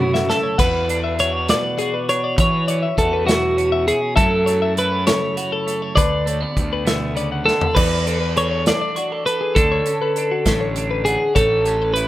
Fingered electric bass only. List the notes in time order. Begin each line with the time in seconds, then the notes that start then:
Already playing: F#2
0.59 E2
2.39 E3
2.98 E2
4.17 F#2
5.97 D2
6.57 D2
7.77 E2
9.57 D2
10.46 A1
11.36 A1